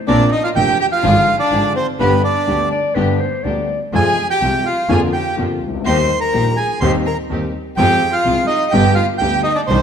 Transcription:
0.07 grand piano A#1 A#2 C3 F3 A#3 D4, double bass A#1, string section C4 D4 A#4, violin D4, bandoneon D5
0.32 violin D#4, bandoneon D#5
0.44 violin F4, bandoneon F5
0.55 double bass F1, grand piano F1 F2 C3 F3 A#3 D4, string section C4 D4 A#4, violin G4, bandoneon G5
0.80 violin G4, bandoneon G5
0.92 violin F4, bandoneon F5
1.03 double bass G#1, grand piano G#1 G#2 D3 F3 G#3 F4, string section D4 F4 G#4
1.40 violin D4, bandoneon D5
1.51 grand piano G#1 G#2 D3 F3 G#3 F4, double bass G#1, string section D4 F4 G#4
1.76 violin C4, bandoneon C5
1.99 double bass G1, grand piano G1 G2 D3 G3 B3 G4, violin B3, string section B3 D4 G4, bandoneon B4
2.23 violin D4, bandoneon D5
2.47 grand piano D2 D3 G3 B3 G4, double bass D2, string section B3 D4 G4
2.72 clarinet D5
2.95 grand piano G1 G2 D3 G3 B3 G4, double bass G1, string section B3 D4 G4, clarinet B4
3.20 clarinet C5
3.44 double bass D2, grand piano D2 D3 G3 B3 G4, string section B3 D4 G4, clarinet D5
3.93 double bass F2, grand piano F2 C3 F3 G#3 F4, string section G#3 C4 F4, violin G#4, bandoneon G#5
4.30 violin G4, bandoneon G5
4.41 double bass C2, grand piano C2 C3 F3 G#3 F4, string section G#3 C4 F4
4.66 violin F4, bandoneon F5
4.89 double bass F2, grand piano F2 D3 F3 A#3 F4, string section A#3 D4 F4, violin G#4, bandoneon G#5
5.13 violin G4, bandoneon G5
5.37 grand piano F2 D3 F3 A#3 F4, double bass F2, string section A#3 D4 F4
5.61 double bass C#2
5.68 grand piano C2
5.74 grand piano C#2
5.81 grand piano D2
5.85 double bass D#2, grand piano D#2 D#3 G3 A#3 G4, string section A#3 D#4 G4, violin C5, bandoneon C6
6.21 violin A#4, bandoneon A#5
6.33 double bass A#1, grand piano A#1 A#2 D#3 G3 A#3 G4, string section A#3 D#4 G4
6.57 violin G#4, bandoneon G#5
6.80 double bass D#2, grand piano D#2 D#3 G3 C4 G4, string section C4 D#4 G4, violin C5, bandoneon C6
7.06 violin A#4, bandoneon A#5
7.30 grand piano D#2 D#3 G3 C4 G4, double bass D#2, string section C4 D#4 G4
7.77 double bass F2, grand piano F2 F3 G#3 C4 G#4, string section C4 F4 G#4, violin G4, bandoneon G5
8.12 violin F4, bandoneon F5
8.25 grand piano C2 C3 F3 G#3 C4 G#4, double bass C2, string section C4 F4 G#4
8.47 violin D#4, bandoneon D#5
8.72 double bass G1, grand piano G1 G2 D3 G3 B3 G4, string section D4 G4 B4, violin G4, bandoneon G5
8.95 violin F4, bandoneon F5
9.18 double bass D2, grand piano D2 D3 G3 B3 G4, string section D4 G4 B4, violin G4, bandoneon G5
9.43 violin D#4, bandoneon D#5
9.55 violin D4, bandoneon D5
9.67 double bass C2, grand piano C2 C3 D#3 C4 D4 G4, violin C4, string section D4 D#4 C5, bandoneon C5

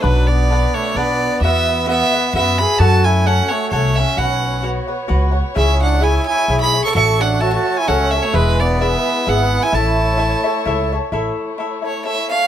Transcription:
0.01 upright bass B1, trumpet F#3, violin section B3 F#4 D5, cavaquinho D4 B4 D5 F#5, violin B4
0.27 trumpet B3, violin D5
0.50 cavaquinho D4 B4 D5 F#5
0.74 trumpet A3, violin C#5
0.95 upright bass B1, trumpet B3, cavaquinho D4 B4 D5 F#5, violin D5
1.41 upright bass E2, trumpet B3, cavaquinho F#4 B4 E5, violin section E5, violin E5
1.45 cavaquinho F#5
1.87 trumpet B3, cavaquinho F#4 B4 E5 F#5, violin E5
2.14 cavaquinho B4 E5 F#5
2.34 upright bass F#2, trumpet B3, cavaquinho F#4 B4 E5 F#5, violin E5
2.58 trumpet G#4, violin B5
2.78 upright bass F#2, violin section A3 A4, trumpet F#4, cavaquinho A4 C#5 F#5 G#5, violin A5
3.04 trumpet E4, violin G#5
3.26 trumpet C#4, cavaquinho A4 C#5 F#5 G#5, violin F#5
3.48 trumpet A3, violin C#5, cavaquinho C#5 F#5 G#5
3.71 upright bass C2, trumpet A3, cavaquinho A4 C#5 F#5 G#5, violin C#5
3.95 cavaquinho C#5 F#5 G#5, violin E5
4.00 trumpet C#4
4.17 upright bass B1, violin section B3 C#5, trumpet C#4, cavaquinho F#4 B4 C#5 F#5, violin F#5
4.63 cavaquinho F#4 B4 C#5 F#5
4.88 cavaquinho B4 C#5 F#5
5.08 upright bass C#2, cavaquinho F#4 B4 C#5 F#5
5.31 cavaquinho B4 C#5 F#5
5.55 upright bass C#2, violin section G#3 E4, trumpet C#4, cavaquinho E4 G#4 C#5 E5, violin E5
5.82 trumpet D4, violin F#5
6.00 cavaquinho E4 G#4 C#5 E5, trumpet E4, violin G#5
6.26 trumpet E4, violin G#5
6.48 upright bass B1, cavaquinho E4 G#4 C#5 E5
6.61 trumpet G#4, violin B5
6.73 cavaquinho G#4 C#5 E5
6.84 trumpet A4, violin C#6
6.95 upright bass A1, violin section A3 F#4 C#5, cavaquinho F#4 A4 C#5 E5, trumpet A4, violin C#6
7.21 trumpet D4, violin F#5
7.40 cavaquinho F#4 A4 C#5 E5, trumpet F#4, violin A5
7.53 trumpet F#4, violin A5
7.77 trumpet E4, violin G#5
7.87 upright bass C#2, trumpet C#4, cavaquinho F#4 A4 C#5 E5, violin F#5
8.10 cavaquinho C#5 E5, violin E5
8.14 trumpet C#4, cavaquinho A4
8.22 trumpet A3, violin C#5
8.33 upright bass E1, violin section G#3 E4 B4, cavaquinho E4 G#4 B4 E5, violin B4
8.37 trumpet G#3
8.60 trumpet B3, violin D5
8.80 trumpet B3, cavaquinho E4 G#4 B4 E5, violin E5
9.27 upright bass G#1, trumpet B3, cavaquinho E4 G#4 B4 E5, violin F#5
9.62 trumpet E4, violin G#5
9.72 upright bass A1, violin section A3 C#5, cavaquinho E4 A4 C#5 E5, trumpet E4, violin A5
10.17 cavaquinho E4 A4 C#5 E5
10.44 cavaquinho A4 C#5 E5
10.65 upright bass C#2, cavaquinho E4 A4 C#5 E5
10.92 cavaquinho A4 C#5 E5
11.12 upright bass A1, violin section A3 E4 C#5, cavaquinho E4 A4 C#5 E5
11.58 cavaquinho E4 A4 C#5 E5
11.82 cavaquinho A4 C#5 E5
11.86 violin C#5
12.05 cavaquinho E4 A4 C#5 E5, violin E5
12.28 cavaquinho A4 C#5 E5, violin F5

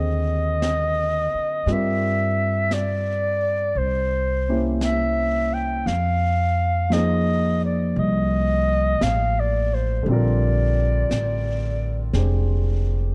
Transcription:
Already playing: upright bass D#2, grand piano D3 C4 F4 G4 G#4 A#4 C5, clarinet D#5
0.62 brush sweep, snare, hi-hat pedal
1.34 muted upright bass stroke
1.66 upright bass G2, grand piano G3 C4 F4, brush sweep, snare
1.71 grand piano A#4 D5, clarinet E5
2.71 clarinet D5, brush sweep, snare, hi-hat pedal
3.75 upright bass C2, clarinet C5, brush sweep
4.49 grand piano A#3 C#4 E4 G4 C5
4.81 clarinet E5, brush sweep, snare, hi-hat pedal
5.54 clarinet G5
5.86 upright bass F2, clarinet F5, brush sweep, snare
6.90 grand piano F3 A#3 D#4, clarinet D#5, brush sweep, snare, hi-hat pedal
6.94 grand piano G#4 C5
7.65 clarinet D5
7.96 upright bass C2, clarinet D#5, brush sweep
9.01 upright bass A1, clarinet F5, brush sweep, snare, hi-hat pedal
9.40 clarinet D5
9.74 clarinet C5
10.03 upright bass A#1, grand piano D3 G3, brush sweep
10.08 grand piano C4 F4, clarinet D5
10.13 grand piano A#4
11.10 upright bass A1, brush sweep, snare, hi-hat pedal
12.13 upright bass F1, grand piano G#3 D4 G4 C5, brush sweep, snare

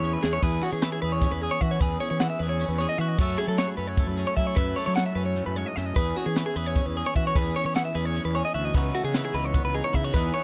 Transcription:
Already playing: fingered electric bass E2, clean electric guitar E2 E3 G#4 C#5
0.04 clean electric guitar C#4
0.13 clean electric guitar B4
0.23 fingered electric bass E2, clean electric guitar G#4, snare
0.33 clean electric guitar C#5
0.42 clean electric guitar E2 G#4 B4, fingered electric bass E2, kick, crash
0.62 clean electric guitar C#4 F#4, closed hi-hat
0.73 fingered electric bass E3, clean electric guitar G#4
0.82 clean electric guitar E3 B4, snare, closed hi-hat
0.92 clean electric guitar G#4
1.02 fingered electric bass E2, clean electric guitar G#4 B4, closed hi-hat
1.12 clean electric guitar C#5
1.21 clean electric guitar C#4, kick, closed hi-hat
1.32 fingered electric bass E2, clean electric guitar B4
1.41 clean electric guitar G#4, closed hi-hat
1.51 clean electric guitar C#5
1.61 fingered electric bass E3, clean electric guitar F#4 E5, kick, closed hi-hat
1.71 clean electric guitar C#5
1.80 fingered electric bass E2, clean electric guitar E2 G#4 B4, kick, closed hi-hat
2.00 clean electric guitar C#4 C#5, closed hi-hat
2.10 fingered electric bass E3, clean electric guitar C#5
2.20 clean electric guitar E3 F#5, snare, closed hi-hat
2.30 clean electric guitar E5
2.39 fingered electric bass E2, clean electric guitar G#4 B4, closed hi-hat
2.49 clean electric guitar C#5
2.59 clean electric guitar C#4, closed hi-hat
2.69 fingered electric bass E2, clean electric guitar B4
2.78 clean electric guitar G#4 C#5, snare, closed hi-hat
2.89 clean electric guitar D#5
2.98 fingered electric bass E3, clean electric guitar F#4 E5, closed hi-hat
3.08 clean electric guitar D#5
3.19 fingered electric bass F#2, clean electric guitar F#2 F#3 A3 C#4 C#5, kick, closed hi-hat
3.23 clean electric guitar E4
3.38 clean electric guitar A3 G#4, closed hi-hat
3.48 fingered electric bass F#3, clean electric guitar A4
3.58 clean electric guitar F#3 C#5, snare, closed hi-hat
3.67 clean electric guitar G#4
3.77 fingered electric bass F#2, clean electric guitar C#4 B4, closed hi-hat
3.87 clean electric guitar C#5
3.97 clean electric guitar A3, kick, closed hi-hat
4.07 fingered electric bass F#2, clean electric guitar B4
4.17 clean electric guitar C#4 G#4, closed hi-hat
4.27 clean electric guitar C#5
4.37 fingered electric bass F#3, clean electric guitar E4 E5, kick, closed hi-hat
4.47 clean electric guitar C#5
4.56 fingered electric bass F#2, clean electric guitar F#2 E4 B4, kick, closed hi-hat
4.76 clean electric guitar A3 C#5, closed hi-hat
4.86 fingered electric bass F#3, clean electric guitar C#5
4.96 clean electric guitar F#3 F#5, snare, closed hi-hat
5.06 clean electric guitar E5
5.15 fingered electric bass F#2, clean electric guitar C#4 B4, closed hi-hat
5.26 clean electric guitar C#5
5.36 clean electric guitar A2, closed hi-hat
5.46 fingered electric bass F#2, clean electric guitar B4
5.56 clean electric guitar G#2 C#5, closed hi-hat
5.66 clean electric guitar D#5
5.76 fingered electric bass F#2, clean electric guitar F#2 E5, snare, closed hi-hat
5.86 clean electric guitar D#5
5.96 fingered electric bass E2, clean electric guitar E2 G#4 B4, kick, closed hi-hat
6.16 clean electric guitar C#4 F#4, snare, closed hi-hat
6.26 fingered electric bass E3, clean electric guitar G#4
6.36 clean electric guitar E3 B4, snare, closed hi-hat
6.46 clean electric guitar G#4
6.56 fingered electric bass E2, clean electric guitar G#4 B4, closed hi-hat
6.66 clean electric guitar C#5
6.75 clean electric guitar C#4, kick, closed hi-hat
6.86 fingered electric bass E2, clean electric guitar B4
6.95 clean electric guitar G#4, closed hi-hat
7.06 clean electric guitar C#5
7.15 fingered electric bass E3, clean electric guitar F#4 E5, kick, closed hi-hat
7.27 clean electric guitar C#5
7.35 fingered electric bass E2, clean electric guitar E2 G#4 B4, kick, closed hi-hat
7.55 clean electric guitar C#4 C#5, closed hi-hat
7.65 fingered electric bass E3, clean electric guitar C#5
7.75 clean electric guitar E3 F#5, snare, closed hi-hat
7.85 clean electric guitar E5
7.95 fingered electric bass E2, clean electric guitar G#4 B4, closed hi-hat
8.05 clean electric guitar C#5
8.15 clean electric guitar C#4, closed hi-hat
8.25 fingered electric bass E2, clean electric guitar B4
8.35 clean electric guitar G#4 C#5, closed hi-hat
8.45 clean electric guitar D#5
8.54 fingered electric bass D2, clean electric guitar F#4 E5, closed hi-hat
8.65 clean electric guitar D#5
8.74 fingered electric bass C#2, clean electric guitar C#3 E3 B3 D#4 F#4 B4, kick, closed hi-hat
8.95 clean electric guitar A3 F#4, snare, closed hi-hat
9.04 fingered electric bass C#3, clean electric guitar B3 G#4
9.14 clean electric guitar E3 B4, snare, closed hi-hat
9.25 clean electric guitar G#4
9.34 fingered electric bass C#2, clean electric guitar D#4 B4, snare, closed hi-hat
9.45 clean electric guitar C#5
9.54 clean electric guitar B3, kick, closed hi-hat
9.64 fingered electric bass C#2, clean electric guitar B4
9.74 clean electric guitar D#4 G#4, closed hi-hat
9.84 clean electric guitar C#5
9.93 fingered electric bass C#3, clean electric guitar E4 E5, kick, closed hi-hat
10.04 clean electric guitar F#4 C#5
10.14 fingered electric bass E2, clean electric guitar E2 E3 B3 D#4 G#4 B4, kick, closed hi-hat
10.33 clean electric guitar B3 C#5, closed hi-hat

